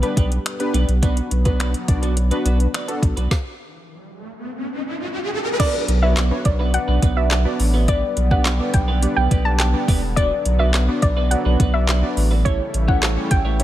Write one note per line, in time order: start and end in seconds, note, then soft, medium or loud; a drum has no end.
0.00 3.28 D3 medium
0.00 1.00 G3 medium
0.00 0.99 B3 medium
0.00 0.38 B3 medium
0.00 0.15 B3 medium
0.00 0.38 D4 medium
0.00 0.14 D4 medium
0.00 0.14 G4 medium
0.00 0.38 G4 medium
0.00 0.14 B4 medium
0.00 0.38 B4 loud
0.00 closed hi-hat medium
0.16 0.39 B1 loud
0.16 0.31 B3 medium
0.16 0.30 D4 medium
0.16 0.30 G4 medium
0.16 0.30 B4 medium
0.16 kick medium
0.16 closed hi-hat medium
0.31 muted clean electric guitar stroke soft
0.31 closed hi-hat soft
0.46 finger snap loud
0.46 closed hi-hat medium
0.59 0.86 B3 medium
0.59 0.86 D4 medium
0.59 0.86 G4 medium
0.59 0.87 B4 loud
0.59 muted clean electric guitar stroke medium
0.59 closed hi-hat medium
0.74 0.85 B1 medium
0.74 0.89 B3 medium
0.74 0.88 D4 medium
0.74 0.87 G4 medium
0.74 0.87 B4 medium
0.74 closed hi-hat medium
0.88 1.21 B1 medium
0.88 muted clean electric guitar stroke soft
0.88 closed hi-hat medium
1.02 3.29 F#3 medium
1.02 3.29 B3 medium
1.02 1.17 B3 medium
1.02 1.29 B3 medium
1.02 1.29 D4 medium
1.02 1.16 D4 medium
1.02 1.29 F#4 medium
1.02 1.16 F#4 medium
1.02 1.29 B4 medium
1.02 1.15 B4 loud
1.02 kick loud
1.02 closed hi-hat medium
1.17 muted clean electric guitar stroke soft
1.17 closed hi-hat medium
1.31 1.74 B1 medium
1.31 muted clean electric guitar stroke soft
1.31 closed hi-hat medium
1.45 1.72 B3 medium
1.45 1.58 B3 soft
1.45 1.72 D4 medium
1.45 1.57 D4 medium
1.45 1.72 F#4 medium
1.45 1.57 F#4 medium
1.45 1.57 B4 medium
1.45 1.72 B4 loud
1.45 kick loud
1.45 closed hi-hat soft
1.59 1.74 B3 medium
1.59 1.73 D4 medium
1.59 1.73 F#4 medium
1.59 1.73 B4 medium
1.59 finger snap loud
1.59 closed hi-hat medium
1.74 muted clean electric guitar stroke soft
1.74 closed hi-hat medium
1.88 2.32 B1 medium
1.88 2.15 B3 medium
1.88 2.15 D4 medium
1.88 2.15 F#4 medium
1.88 2.15 D5 loud
1.88 muted clean electric guitar stroke soft
1.88 kick loud
1.88 closed hi-hat medium
2.03 2.15 B3 soft
2.03 2.15 D4 medium
2.03 2.14 F#4 medium
2.03 2.14 B4 medium
2.03 closed hi-hat medium
2.17 muted clean electric guitar stroke soft
2.17 closed hi-hat medium
2.31 2.67 B3 medium
2.31 2.43 B3 medium
2.31 2.67 D4 medium
2.31 2.43 D4 medium
2.31 2.67 F#4 medium
2.31 2.43 F#4 medium
2.31 2.43 B4 medium
2.31 2.67 B4 loud
2.31 closed hi-hat medium
2.45 2.67 B1 loud
2.45 2.60 B3 medium
2.45 2.59 D4 medium
2.45 2.59 F#4 medium
2.45 2.58 B4 medium
2.45 closed hi-hat medium
2.60 muted clean electric guitar stroke soft
2.60 closed hi-hat medium
2.74 2.89 B3 medium
2.74 2.88 D4 medium
2.74 2.87 F#4 medium
2.74 2.87 B4 medium
2.74 finger snap loud
2.74 closed hi-hat medium
2.88 3.15 B3 medium
2.88 3.15 D4 medium
2.88 3.15 F#4 medium
2.88 3.15 A4 medium
2.88 muted clean electric guitar stroke soft
2.88 closed hi-hat medium
3.03 3.13 B1 loud
3.03 muted clean electric guitar stroke soft
3.03 kick loud
3.03 closed hi-hat medium
3.17 3.28 B1 loud
3.17 3.29 B3 medium
3.17 3.29 D4 medium
3.17 3.29 F#4 medium
3.17 3.28 B4 medium
3.17 closed hi-hat medium
3.31 kick loud
3.31 snare medium
3.31 riser medium
5.59 12.41 D3 medium
5.59 7.86 F#3 medium
5.59 12.41 B3 loud
5.59 5.74 B3 medium
5.59 5.86 B3 medium
5.59 5.86 D4 medium
5.59 5.74 D4 medium
5.59 5.86 F#4 medium
5.59 5.73 F#4 medium
5.59 5.86 B4 medium
5.59 5.73 B4 loud
5.59 5.69 D5 loud
5.59 5.86 D5 medium
5.59 kick loud
5.59 closed hi-hat medium
5.59 crash loud
5.74 muted clean electric guitar stroke medium
5.88 6.31 B1 loud
5.88 muted clean electric guitar stroke soft
5.88 closed hi-hat medium
6.02 6.20 B3 medium
6.02 6.15 B3 medium
6.02 6.20 D4 medium
6.02 6.15 D4 medium
6.02 6.20 F#4 medium
6.02 6.14 F#4 medium
6.02 6.14 B4 medium
6.02 6.20 B4 medium
6.02 6.20 C#5 medium
6.02 6.12 E5 medium
6.17 6.32 B3 medium
6.17 6.31 D4 medium
6.17 6.30 F#4 medium
6.17 6.30 B4 loud
6.17 snare loud
6.17 clap loud
6.17 closed hi-hat medium
6.31 6.58 B3 medium
6.31 6.58 D4 medium
6.31 6.58 F#4 medium
6.31 6.58 B4 medium
6.31 6.58 C#5 medium
6.31 muted clean electric guitar stroke medium
6.45 6.78 B1 loud
6.45 6.65 D5 medium
6.45 muted clean electric guitar stroke soft
6.45 kick loud
6.45 closed hi-hat medium
6.59 6.72 B3 medium
6.59 6.72 D4 medium
6.59 6.71 F#4 medium
6.59 6.71 B4 medium
6.74 7.00 B3 medium
6.74 7.00 D4 medium
6.74 7.01 F#4 medium
6.74 7.01 B4 medium
6.74 7.01 D5 medium
6.74 6.84 F#5 medium
6.74 closed hi-hat loud
6.88 6.99 B1 loud
6.88 7.00 B3 medium
6.88 7.00 D4 medium
6.88 7.00 F#4 medium
6.88 7.00 B4 medium
7.02 7.46 B1 loud
7.02 7.17 B3 medium
7.02 7.16 D4 medium
7.02 7.16 F#4 medium
7.02 7.15 B4 medium
7.02 kick medium
7.02 closed hi-hat medium
7.16 7.34 B3 medium
7.16 7.34 D4 medium
7.16 7.35 F#4 medium
7.16 7.35 B4 medium
7.16 7.35 D5 medium
7.16 7.36 E5 medium
7.16 muted clean electric guitar stroke medium
7.31 7.46 B3 medium
7.31 7.45 D4 medium
7.31 7.44 F#4 medium
7.31 7.44 B4 medium
7.31 snare medium
7.31 clap loud
7.31 closed hi-hat loud
7.45 7.72 B3 medium
7.45 7.72 D4 medium
7.45 7.72 F#4 medium
7.45 7.72 B4 medium
7.45 7.72 D5 medium
7.45 muted clean electric guitar stroke soft
7.59 8.03 A1 loud
7.59 muted clean electric guitar stroke soft
7.59 open hi-hat medium
7.74 7.86 B3 medium
7.74 7.86 D4 medium
7.74 7.86 F#4 medium
7.74 7.86 B4 medium
7.88 10.15 G3 medium
7.88 8.15 B3 medium
7.88 8.03 B3 medium
7.88 8.15 D4 medium
7.88 8.02 D4 medium
7.88 8.15 G4 medium
7.88 8.02 G4 loud
7.88 8.15 B4 medium
7.88 8.01 B4 loud
7.88 7.98 D5 loud
7.88 8.15 D5 medium
7.88 kick loud
7.88 closed hi-hat medium
8.02 muted clean electric guitar stroke soft
8.17 8.60 B1 medium
8.17 muted clean electric guitar stroke soft
8.17 closed hi-hat medium
8.31 8.49 B3 medium
8.31 8.43 B3 medium
8.31 8.49 D4 medium
8.31 8.43 D4 medium
8.31 8.49 G4 medium
8.31 8.43 G4 medium
8.31 8.43 B4 medium
8.31 8.49 B4 medium
8.31 8.49 D5 medium
8.31 8.41 F#5 medium
8.31 kick loud
8.45 8.60 B3 medium
8.45 8.59 D4 medium
8.45 8.59 G4 loud
8.45 8.58 B4 medium
8.45 snare loud
8.45 clap loud
8.45 closed hi-hat medium
8.59 8.86 B3 medium
8.59 8.86 D4 medium
8.59 8.86 G4 medium
8.59 8.86 B4 medium
8.59 8.86 D5 medium
8.59 muted clean electric guitar stroke medium
8.74 9.06 B1 loud
8.74 8.93 G5 medium
8.74 muted clean electric guitar stroke soft
8.74 kick loud
8.74 closed hi-hat medium
8.88 9.00 B3 medium
8.88 9.00 D4 medium
8.88 9.00 G4 medium
8.88 9.00 B4 medium
9.02 9.29 B3 medium
9.02 9.29 D4 medium
9.02 9.29 G4 medium
9.02 9.29 B4 medium
9.02 9.29 D5 medium
9.02 muted clean electric guitar stroke soft
9.02 closed hi-hat loud
9.16 9.28 B1 loud
9.16 9.29 B3 medium
9.16 9.29 D4 medium
9.16 9.29 G4 medium
9.16 9.28 B4 medium
9.16 9.26 G5 medium
9.31 9.74 B1 loud
9.31 9.46 B3 loud
9.31 9.45 D4 medium
9.31 9.45 G4 loud
9.31 9.44 B4 medium
9.31 kick loud
9.31 closed hi-hat medium
9.45 9.63 B3 medium
9.45 9.63 D4 medium
9.45 9.63 G4 medium
9.45 9.63 B4 medium
9.45 9.63 D5 medium
9.45 9.55 A5 medium
9.45 muted clean electric guitar stroke soft
9.59 10.00 G5 medium
9.59 snare medium
9.59 clap loud
9.59 closed hi-hat loud
9.74 10.00 B3 medium
9.74 10.00 D4 medium
9.74 10.00 G4 medium
9.74 10.01 B4 medium
9.74 10.01 D5 medium
9.74 muted clean electric guitar stroke medium
9.88 10.32 E1 loud
9.88 10.03 B3 medium
9.88 10.02 D4 medium
9.88 10.02 G4 medium
9.88 10.01 B4 loud
9.88 kick loud
9.88 open hi-hat medium
10.03 muted clean electric guitar stroke soft
10.16 12.43 F#3 medium
10.16 10.43 B3 medium
10.16 10.32 B3 loud
10.16 10.43 D4 medium
10.16 10.31 D4 medium
10.16 10.43 F#4 medium
10.16 10.30 F#4 loud
10.16 10.44 B4 medium
10.16 10.30 B4 loud
10.16 10.26 D5 loud
10.16 10.44 D5 medium
10.16 kick loud
10.16 closed hi-hat medium
10.31 muted clean electric guitar stroke medium
10.45 10.89 B1 loud
10.45 muted clean electric guitar stroke soft
10.45 closed hi-hat medium
10.59 10.77 B3 medium
10.59 10.72 B3 medium
10.59 10.77 D4 medium
10.59 10.72 D4 medium
10.59 10.71 F#4 medium
10.59 10.77 F#4 medium
10.59 10.71 B4 medium
10.59 10.77 B4 medium
10.59 10.78 D5 medium
10.59 10.69 E5 medium
10.74 10.89 B3 medium
10.74 10.88 D4 loud
10.74 10.87 F#4 loud
10.74 10.87 B4 loud
10.74 snare loud
10.74 clap loud
10.74 closed hi-hat medium
10.88 11.15 B3 medium
10.88 11.15 D4 medium
10.88 11.15 F#4 medium
10.88 11.15 B4 medium
10.88 11.15 D5 medium
10.88 muted clean electric guitar stroke medium
11.02 11.35 B1 loud
11.02 11.22 D5 medium
11.02 muted clean electric guitar stroke soft
11.02 kick loud
11.02 closed hi-hat medium
11.17 11.29 B3 medium
11.17 11.29 D4 medium
11.17 11.29 F#4 medium
11.17 11.28 B4 medium
11.31 11.58 B3 medium
11.31 11.58 D4 medium
11.31 11.58 F#4 medium
11.31 11.58 B4 medium
11.31 11.58 D5 medium
11.31 11.41 F#5 medium
11.31 muted clean electric guitar stroke soft
11.31 closed hi-hat loud
11.45 11.56 B1 loud
11.45 11.58 B3 medium
11.45 11.57 D4 medium
11.45 11.57 F#4 medium
11.45 11.57 B4 medium
11.60 12.03 B1 loud
11.60 11.74 B3 medium
11.60 11.74 D4 medium
11.60 11.73 F#4 medium
11.60 11.73 B4 loud
11.60 kick loud
11.60 closed hi-hat medium
11.74 11.92 B3 medium
11.74 11.92 D4 medium
11.74 11.92 F#4 medium
11.74 11.92 B4 medium
11.74 11.92 D5 medium
11.74 11.93 E5 medium
11.74 muted clean electric guitar stroke medium
11.88 12.03 B3 loud
11.88 12.02 D4 loud
11.88 12.02 F#4 medium
11.88 12.01 B4 loud
11.88 snare medium
11.88 clap loud
11.88 closed hi-hat medium
12.02 12.29 B3 medium
12.02 12.29 D4 medium
12.02 12.29 F#4 medium
12.02 12.29 B4 medium
12.02 12.29 D5 medium
12.02 muted clean electric guitar stroke medium
12.17 12.60 A1 loud
12.17 muted clean electric guitar stroke soft
12.17 open hi-hat medium
12.31 12.43 B3 medium
12.31 12.43 D4 medium
12.31 12.43 F#4 medium
12.31 12.43 B4 medium
12.45 13.63 C#3 medium
12.45 13.63 E3 medium
12.45 13.63 G3 medium
12.45 12.60 A3 medium
12.45 13.63 A3 medium
12.45 12.72 C#4 medium
12.45 12.72 E4 medium
12.45 12.59 E4 medium
12.45 13.63 E4 loud
12.45 12.72 G4 medium
12.45 12.59 G4 loud
12.45 12.72 A4 medium
12.45 12.55 C#5 loud
12.45 12.72 C#5 medium
12.45 12.58 C#5 medium
12.45 kick loud
12.45 closed hi-hat medium
12.59 muted clean electric guitar stroke soft
12.74 13.17 A1 medium
12.74 muted clean electric guitar stroke soft
12.74 closed hi-hat medium
12.88 13.00 A3 medium
12.88 13.06 C#4 medium
12.88 13.06 E4 medium
12.88 13.00 E4 medium
12.88 13.00 G4 medium
12.88 13.06 G4 medium
12.88 13.06 A4 medium
12.88 13.00 C#5 medium
12.88 13.06 C#5 medium
12.88 12.98 F#5 medium
12.88 kick loud
13.02 13.17 A3 medium
13.02 13.16 E4 medium
13.02 13.16 G4 medium
13.02 13.15 C#5 loud
13.02 snare loud
13.02 clap loud
13.02 closed hi-hat medium
13.16 13.43 C#4 medium
13.16 13.43 E4 medium
13.16 13.43 G4 medium
13.16 13.43 A4 medium
13.16 13.43 C#5 medium
13.16 muted clean electric guitar stroke soft
13.30 13.63 A1 loud
13.30 13.50 G5 medium
13.30 muted clean electric guitar stroke soft
13.30 kick loud
13.30 closed hi-hat medium
13.45 13.57 A3 medium
13.45 13.57 E4 medium
13.45 13.57 G4 medium
13.45 13.57 C#5 medium
13.59 13.63 C#4 medium
13.59 13.63 E4 medium
13.59 13.63 G4 medium
13.59 13.63 A4 medium
13.59 13.63 C#5 medium
13.59 muted clean electric guitar stroke soft
13.59 closed hi-hat loud